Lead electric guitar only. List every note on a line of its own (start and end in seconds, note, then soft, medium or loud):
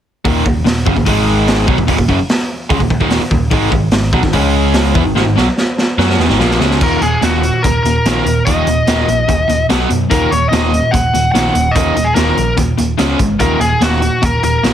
6.83 7.02 A#4 medium
7.02 7.21 G#4 medium
7.24 7.62 F#4 medium
7.63 7.82 A#4 medium
7.83 8.42 A#4 medium
8.45 9.66 D#5 loud
10.11 10.32 A#4 medium
10.31 10.49 C#5 medium
10.49 10.93 D#5 medium
10.91 11.31 F#5 medium
11.32 11.76 F#5 medium
11.71 12.05 D#5 loud
12.04 12.15 G#4 medium
12.15 12.54 A#4 medium
13.40 13.59 A#4 medium
13.61 13.82 G#4 medium
13.83 14.24 F#4 medium
14.25 14.43 A#4 medium
14.44 14.73 A#4 medium